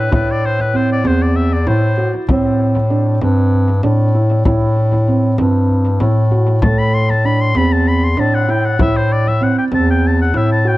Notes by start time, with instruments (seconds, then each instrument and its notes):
0.00 oboe B4
0.12 bass clarinet A2, felt piano E4, oboe B4, frame drum
0.31 oboe D5
0.46 oboe C5
0.61 oboe B4
0.74 felt piano C4, oboe C5, frame drum
0.92 oboe D5
1.04 bass clarinet E2, felt piano C4, oboe C5, frame drum
1.22 oboe D5
1.36 oboe E5, frame drum
1.53 oboe D5
1.67 bass clarinet A2, felt piano E4, oboe C5, frame drum
1.97 felt piano F#4
2.28 bass clarinet A2, felt piano C4, frame drum
2.90 felt piano D4, frame drum
3.21 bass clarinet G2, felt piano C4, frame drum
3.53 frame drum
3.83 bass clarinet A2, felt piano D4, frame drum
4.15 felt piano E4
4.45 bass clarinet A2, felt piano E4, frame drum
5.07 felt piano C4, frame drum
5.38 bass clarinet G2, felt piano C4, frame drum
5.69 frame drum
6.00 bass clarinet A2, felt piano E4, frame drum
6.31 felt piano F#4, frame drum
6.62 bass clarinet A2, felt piano A3, oboe A5, frame drum
6.78 oboe B5
6.94 oboe C6
7.10 oboe A5
7.24 felt piano D4, oboe B5, frame drum
7.41 oboe C6
7.55 bass clarinet E2, felt piano C4, oboe B5, frame drum
7.73 oboe A5
7.86 oboe B5, frame drum
8.04 oboe C6
8.17 bass clarinet A2, felt piano D4, oboe A5, frame drum
8.35 oboe F#5
8.49 felt piano E4, oboe G5
8.66 oboe F#5
8.79 bass clarinet A2, felt piano E4, oboe E5, frame drum
8.96 oboe C5
9.12 oboe D5
9.28 oboe E5
9.41 felt piano C4, oboe F#5, frame drum
9.58 oboe G5
9.72 bass clarinet E2, felt piano C4, oboe A5, frame drum
9.91 oboe G5
10.03 frame drum
10.07 oboe A5
10.22 oboe F#5
10.34 bass clarinet A2, felt piano E4, oboe E5, frame drum
10.52 oboe A5
10.65 felt piano F#4, oboe G5